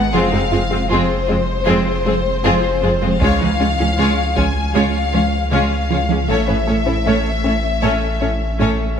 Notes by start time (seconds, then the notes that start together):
Already playing: G#1 F#5
0.12 F1 F2 F3 G#3 C4 F4 G#4 F5
0.32 F2 G#3 C4 D#4 F#4
0.51 F2 G#3 C4 F4 G#4
0.71 F2 G#3 C4 F4
0.89 F2 F3 G#3 C4 F4 G#4 C5
1.27 F2 G#3 C4 F4 G#4
1.66 F2 F3 G#3 C4 F4 G#4
2.06 F2 G#3 C4 F4 G#4
2.44 F2 F3 G#3 C4 F4 G#4
2.82 F2 G#3 C4 F4 G#4
3.02 F2 G#3 C4 F4
3.20 C#2 C#3 G#3 C#4 F4 C#5 F5, taiko
3.40 C#2 F3 G#3 C#4 D#4 B4
3.59 C#2 G#3 C#4 F4 C#5
3.78 C#2 F3 G#3 C#4 G#4
3.97 C#2 C#3 G#3 C#4 F4 C#5
4.36 C#2 F3 G#3 C#4 F4 C#5 G#5, taiko
4.74 C#2 C#3 G#3 C#4 F4 C#5 F5
5.14 C#2 F3 G#3 C#4 F4 C#5
5.52 C#2 C#3 G#3 C#4 F4 C#5 F5
5.90 C#2 F3 G#3 C#4 F4 C#5
6.09 C#2 F3 G#3 C#4 G#4
6.28 A1 A2 A3 C#4 A4 C#5 E5
6.48 A2 A3 C#4 G#4 B4
6.67 A2 A3 C#4 A4 C#5
6.86 A2 A3 C#4 E4 A4
7.06 A2 A3 C#4 A4 C#5
7.44 A2 A3 C#4 A4 C#5
7.82 A2 A3 C#4 A4 C#5
8.21 A2 A3 C#4 A4 C#5
8.60 A2 A3 C#4 A4 C#5